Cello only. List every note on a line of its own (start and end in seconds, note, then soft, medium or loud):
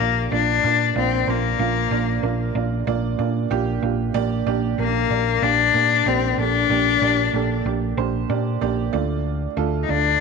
0.00 0.29 A#3 medium
0.34 0.93 D4 medium
0.98 1.31 C4 medium
1.30 2.56 A#3 medium
4.80 5.45 A#3 loud
5.43 6.09 D4 loud
6.07 6.41 C4 loud
6.39 7.66 D4 loud
9.83 9.91 D#4 medium
9.90 10.20 D4 medium